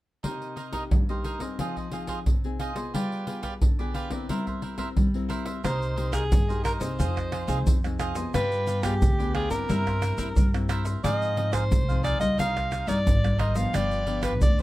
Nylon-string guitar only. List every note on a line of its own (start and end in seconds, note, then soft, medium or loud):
0.24 0.88 C3 medium
0.24 0.56 A#3 soft
0.24 0.56 D#4 soft
0.24 0.56 G4 medium
0.73 1.02 A#3 medium
0.73 1.02 D#4 medium
0.73 1.02 G4 medium
0.91 1.56 G2 medium
1.09 1.37 A#3 medium
1.09 1.37 D#4 soft
1.09 1.37 G4 medium
1.40 1.86 C4 medium
1.40 1.87 D#4 medium
1.40 1.87 G#4 medium
1.59 2.23 F3 medium
1.92 2.24 C4 soft
1.92 2.24 D#4 soft
1.92 2.24 G#4 medium
2.27 2.91 C3 medium
2.44 2.72 C4 soft
2.44 2.72 D#4 soft
2.44 2.73 G#4 medium
2.75 3.25 B3 medium
2.75 3.26 F4 medium
2.75 3.26 G#4 medium
2.94 3.58 G3 medium
3.27 3.59 B3 soft
3.27 3.59 F4 soft
3.27 3.60 G#4 medium
3.62 4.26 D3 medium
3.79 4.07 B3 medium
3.79 4.08 F4 medium
3.79 4.08 G#4 medium
4.11 4.74 C4 medium
4.11 4.74 E4 soft
4.11 4.74 A#4 medium
4.29 4.94 G3 medium
4.78 5.07 C4 medium
4.78 5.07 E4 medium
4.78 5.08 A#4 medium
4.97 5.61 G3 medium
5.14 5.59 C4 medium
5.14 5.60 E4 medium
5.14 5.60 A#4 medium
5.64 6.29 C3 soft
5.64 5.93 A#3 soft
5.64 5.93 D#4 soft
5.64 5.93 G4 soft
5.97 6.29 A#3 soft
5.97 6.30 D#4 soft
5.97 6.30 G4 medium
6.32 6.96 G2 medium
6.49 6.77 A#3 medium
6.49 6.78 D#4 medium
6.49 6.78 G4 medium
6.81 7.44 C4 medium
6.81 7.44 D#4 medium
6.81 7.44 G#4 medium
6.99 7.63 F3 medium
7.48 7.77 C4 medium
7.48 7.78 D#4 medium
7.48 7.78 G#4 medium
7.67 8.31 C3 medium
7.85 8.13 C4 medium
7.85 8.13 D#4 medium
7.85 8.13 G#4 medium
8.16 8.62 B3 medium
8.16 8.62 F4 medium
8.16 8.62 G#4 medium
8.35 8.99 G3 soft
8.83 9.12 B3 medium
8.83 9.13 F4 medium
8.83 9.13 G#4 medium
9.02 9.66 D3 soft
9.20 9.48 B3 medium
9.20 9.48 F4 medium
9.20 9.48 G#4 medium
9.51 10.14 C4 medium
9.51 10.14 E4 medium
9.51 10.14 A#4 medium
9.70 10.33 G3 medium
10.18 10.47 C4 medium
10.18 10.48 E4 medium
10.18 10.48 A#4 medium
10.37 11.01 G3 medium
10.54 10.99 C4 medium
10.54 10.99 E4 medium
10.54 11.00 A#4 medium
11.04 11.68 G#2 soft
11.04 11.33 F3 soft
11.04 11.33 C4 soft
11.04 11.33 D#4 soft
11.37 11.83 F3 soft
11.37 11.83 C4 medium
11.37 11.83 D#4 medium
11.71 12.36 G#2 medium
11.89 12.17 F3 medium
11.89 12.17 C4 medium
11.89 12.18 D#4 medium
12.20 12.83 G3 medium
12.20 12.84 A#3 medium
12.20 12.84 D#4 medium
12.39 13.03 C3 medium
12.88 13.17 G3 medium
12.88 13.18 A#3 medium
12.88 13.18 D#4 medium
13.07 13.71 G2 medium
13.24 13.52 G3 medium
13.24 13.53 A#3 medium
13.24 13.53 D#4 medium
13.55 14.02 F3 medium
13.55 14.02 B3 medium
13.55 14.02 D4 medium
13.74 14.38 G2 soft
14.07 14.53 F3 medium
14.07 14.53 B3 medium
14.07 14.53 D4 medium
14.41 14.62 D3 medium
14.59 14.62 F3 medium